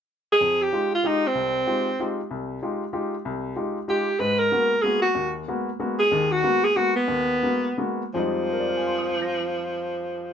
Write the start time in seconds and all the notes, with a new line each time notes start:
0.32 G#4
0.41 F2
0.62 G4
0.72 G#3 D#4 F4 G4
0.95 F4
1.04 G#3 D#4 F4 G4
1.27 C4
1.35 C2
1.67 G#3 D#4 F4 G4
2.00 G#3 D#4 F4 G4
2.31 C2
2.63 G#3 D#4 F4 G4
2.93 G#3 D#4 F4 G4
3.25 C2
3.56 G#3 D#4 F4 G4
3.88 G#3 D#4 F4 G4
4.19 G#2 G#3 B4
4.38 A#4
4.51 G#3 A#3 B3 F#4
4.82 G#3 A#3 B3 F#4 G#4
5.02 F#4
5.15 D#2
5.48 G#3 A#3 B3 F#4
5.80 G#3 A#3 B3 F#4
5.99 G#4
6.12 D#2 D#3
6.31 F#4
6.43 G#3 A#3 B3 F#4
6.64 G#4
6.76 G#3 A#3 B3 F#4
6.96 B3
7.08 D#2
7.43 G#3 A#3 B3 F#4
7.78 G#3 A#3 B3 F#4
8.14 F2 F3 G3 G#3 D#4
8.53 A#4
8.60 D5
8.68 F5
8.77 G#5
8.87 C6
8.98 D#6
9.10 G6
9.22 A#6